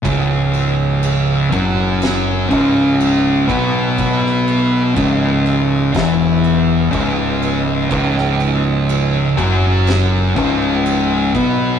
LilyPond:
<<
  \new Staff \with { instrumentName = "Distorted electric guitar" } { \clef bass \time 4/4 \key cis \minor \tempo 4 = 61 <cis, cis>4. <fis, fis>4 <cis, cis>4 <b, b>8~ | <b, b>4 <cis, cis>4 <e, e>4 <cis, cis>4 | <cis, cis>4. <fis, fis>4 <cis, cis>4 <b, b>8 | }
  \new Staff \with { instrumentName = "Distorted electric guitar" } { \clef bass \time 4/4 \key cis \minor <cis, cis>4. <fis, fis>4 <cis, cis>4 <b, b>8~ | <b, b>4 <cis, cis>4 <e, e>4 <cis, cis>4 | <cis, cis>4. <fis, fis>4 <cis, cis>4 <b, b>8 | }
  \new Staff \with { instrumentName = "Fingered electric bass" } { \clef bass \time 4/4 \key cis \minor cis,,4. fis,,4 cis,,4 b,,8~ | b,,4 cis,,4 e,,4 cis,,4 | cis,,4. fis,,4 cis,,4 b,,8 | }
  \new DrumStaff \with { instrumentName = "Drums" } \drummode { \time 4/4 <cymc bd>8 cymc8 cymc8 <cymc bd>8 <cymc sn>8 <cymc bd>8 cymc8 <cymc bd>8 | <cymc bd>16 sn16 cymc8 <cymc bd>8 cymc8 <cymc bd sn>8 cymc8 <cymc bd>8 cymc8 | <cymc bd>16 sn16 cymc8 cymc8 <cymc bd>8 <cymc sn>8 <cymc bd>8 cymc8 <cymc bd>8 | }
>>